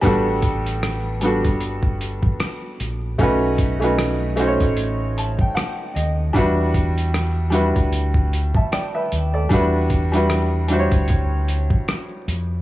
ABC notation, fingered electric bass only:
X:1
M:4/4
L:1/16
Q:"Swing 16ths" 1/4=76
K:Edor
V:1 name="Fingered electric bass" clef=bass
A,,,6- A,,, G,,,4 z3 ^A,,,2 | B,,,6- B,,, A,,,4 z3 ^D,,2 | E,,6- E,, D,,4 z3 ^D,,2 | E,,6- E,, D,,4 z3 =F,,2 |]